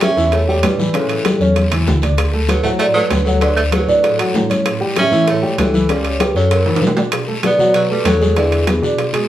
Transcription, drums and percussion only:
0.01 high bongo, high conga, high timbale, low timbale, short guiro
0.18 high bongo, short guiro
0.32 high bongo, high conga, high timbale, long guiro
0.49 high conga
0.63 high bongo, low bongo, high conga, high timbale, low timbale, short guiro
0.79 high bongo, high conga, short guiro
0.94 high bongo, high conga, high timbale, long guiro
1.09 high bongo, high conga, high timbale
1.25 high bongo, high conga, high timbale, low timbale, short guiro
1.41 high bongo, high conga, short guiro
1.56 high bongo, high conga, high timbale, long guiro
1.71 low conga, high timbale
1.87 high bongo, low bongo, low conga, low timbale, short guiro
2.02 high bongo, low conga, high timbale, short guiro
2.18 high bongo, high timbale, long guiro
2.33 high bongo, high conga
2.48 high bongo, high conga, high timbale, low timbale, short guiro
2.64 high bongo, short guiro
2.79 high bongo, high conga, high timbale, long guiro
2.95 high conga
3.10 high bongo, low bongo, high conga, high timbale, low timbale, short guiro
3.26 high bongo, high conga, short guiro
3.41 high bongo, high conga, high timbale, long guiro
3.57 high bongo, high timbale
3.72 high bongo, high conga, high timbale, low timbale, short guiro
3.88 high bongo, high conga, short guiro
4.03 high bongo, high conga, high timbale, long guiro
4.19 high conga, high timbale
4.34 high bongo, low bongo, high conga, low timbale, short guiro
4.50 high bongo, high conga, high timbale, short guiro
4.66 high bongo, high conga, high timbale, long guiro
4.81 high bongo, high conga
4.96 high bongo, high conga, high timbale, low timbale, short guiro
5.12 high bongo, short guiro
5.27 high bongo, high conga, high timbale, long guiro
5.44 high conga
5.58 high bongo, low bongo, high conga, high timbale, low timbale, short guiro
5.74 high bongo, high conga, short guiro
5.89 high bongo, high timbale, long guiro
6.05 high bongo, high timbale
6.20 high bongo, high conga, high timbale, low timbale, short guiro
6.36 high bongo, short guiro
6.51 high bongo, high conga, high timbale, long guiro
6.66 high conga, high timbale
6.76 high timbale
6.82 high bongo, low bongo, high conga, short guiro
6.87 low timbale
6.97 high bongo, low timbale, short guiro
7.12 high bongo, high conga, high timbale, long guiro
7.28 high bongo, high conga
7.43 high bongo, high conga, high timbale, low timbale, short guiro
7.59 high bongo, short guiro
7.74 high bongo, high conga, high timbale, long guiro
7.90 high conga
8.05 high bongo, low bongo, high conga, high timbale, low timbale, short guiro
8.21 high bongo, high conga, short guiro
8.36 high bongo, high conga, high timbale, long guiro
8.52 high bongo, high conga, high timbale
8.67 high bongo, high conga, high timbale, low timbale, short guiro
8.83 high bongo, high conga, short guiro
8.98 high bongo, high conga, high timbale, long guiro
9.14 high conga, high timbale

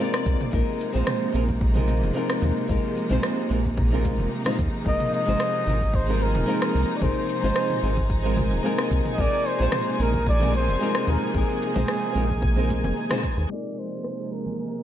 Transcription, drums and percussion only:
0.00 shaker
0.14 cross-stick
0.26 kick, shaker
0.41 mid tom, shaker
0.53 kick, shaker
0.81 shaker
0.95 shaker
1.07 cross-stick, mid tom, shaker
1.35 shaker
1.49 kick, low conga, shaker
1.61 kick, shaker
1.76 mid tom
1.88 high conga, shaker
2.03 low conga, shaker
2.16 shaker
2.30 cross-stick
2.42 mid tom, shaker
2.57 shaker
2.69 kick, shaker
2.97 shaker
3.11 mid tom, shaker
3.23 cross-stick, shaker
3.51 shaker
3.65 kick, low conga, shaker
3.77 kick, mid tom, shaker
4.05 kick, high conga, shaker
4.19 low conga, shaker
4.32 shaker
4.46 cross-stick, mid tom
4.59 kick, shaker
4.74 shaker
4.86 kick, shaker
5.00 mid tom
5.13 shaker
5.28 shaker
5.40 cross-stick, shaker
5.67 mid tom, shaker
5.81 kick, low conga, shaker
5.94 kick, shaker
6.21 high conga, shaker
6.35 mid tom, low conga, shaker
6.48 shaker
6.62 cross-stick
6.75 shaker
6.90 shaker
7.02 kick, mid tom, shaker
7.29 shaker
7.44 shaker
7.56 cross-stick, shaker
7.70 mid tom
7.83 shaker
7.97 kick, low conga, shaker
8.10 kick, shaker
8.37 kick, mid tom, high conga, shaker
8.51 low conga, shaker
8.65 shaker
8.78 cross-stick
8.91 kick, shaker
9.06 mid tom, shaker
9.18 kick, shaker
9.46 shaker
9.60 shaker
9.72 cross-stick, mid tom, shaker
10.00 shaker
10.14 kick, low conga, shaker
10.27 kick, shaker
10.41 mid tom
10.53 high conga, shaker
10.68 low conga, shaker
10.81 shaker
10.95 cross-stick
11.07 mid tom, shaker
11.23 shaker
11.34 kick, shaker
11.62 shaker
11.76 mid tom, shaker
11.88 cross-stick, shaker
12.16 shaker
12.30 kick, low conga, shaker
12.42 kick, mid tom, shaker
12.69 kick, high conga, shaker
12.84 low conga, shaker
12.97 shaker
13.11 cross-stick, mid tom
13.23 kick, shaker
13.38 shaker
14.04 cross-stick
14.32 shaker
14.46 low conga

